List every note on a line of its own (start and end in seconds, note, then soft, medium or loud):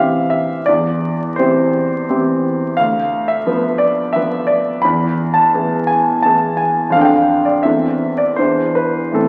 0.00 0.70 C3 soft
0.00 0.70 E3 soft
0.00 0.70 C4 soft
0.00 0.70 G4 soft
0.00 0.30 E5 medium
0.00 0.70 F5 medium
0.00 0.70 G5 medium
0.30 0.66 E5 medium
0.66 1.36 E2 medium
0.66 1.37 D5 medium
1.36 2.05 E3 soft
1.36 2.06 C4 soft
1.36 2.06 G4 soft
1.36 2.08 C5 medium
2.10 2.75 E3 soft
2.10 2.75 C4 soft
2.10 2.75 G4 soft
2.77 3.45 D2 medium
2.77 3.29 F5 medium
3.28 3.80 E5 medium
3.46 4.11 F3 soft
3.46 4.11 B3 soft
3.46 4.12 B4 soft
3.78 4.14 D5 medium
4.13 4.80 F3 soft
4.13 4.80 B3 soft
4.13 4.80 B4 soft
4.13 4.48 E5 medium
4.47 4.83 D5 medium
4.82 5.52 E2 medium
4.82 5.35 B5 medium
5.34 5.88 A5 medium
5.54 6.21 E3 soft
5.54 6.21 B3 soft
5.54 6.21 G#4 soft
5.87 6.23 G#5 medium
6.22 6.90 E3 soft
6.22 6.91 B3 soft
6.22 6.91 G#4 soft
6.22 6.58 A5 medium
6.57 6.93 G#5 medium
6.90 7.61 F2 soft
6.90 7.00 F5 medium
6.94 7.62 D3 soft
6.94 7.62 D4 soft
6.94 7.62 A4 soft
7.01 7.46 F5 medium
7.01 7.08 G5 medium
7.45 7.64 D5 medium
7.63 8.36 E2 soft
7.63 8.35 E3 soft
7.63 8.35 C4 soft
7.63 8.35 A4 soft
7.63 8.19 E5 medium
8.18 8.38 D5 medium
8.36 9.16 E2 soft
8.36 9.12 E3 soft
8.36 9.15 D4 soft
8.36 9.15 G#4 soft
8.36 8.77 C5 medium
8.75 9.17 B4 medium
9.12 9.29 A2 soft
9.12 9.29 E3 soft
9.12 9.29 C4 soft
9.12 9.29 A4 medium